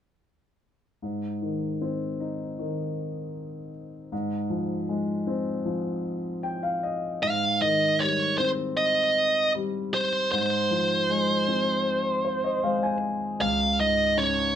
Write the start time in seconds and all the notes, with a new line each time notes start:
1.02 G#2
1.42 D#3
1.81 C4
2.20 D#4
2.59 D#3
4.12 G#2
4.50 F3
4.89 G#3
5.27 C4
5.66 F3
6.43 G5
6.63 F5
6.83 D#5
7.23 G#2 F5
7.62 D#3 D#5
8.00 G3 C#5
8.38 C4 C5
8.77 D#5
9.55 G3
9.94 C5
10.32 G#2 C5
10.71 F3
11.10 G#3
11.48 C4
12.25 C5
12.44 D#5
12.63 G#3 F5
12.83 G#5
13.41 C#2 F5
13.79 G#2 D#5
14.17 C#3 C#5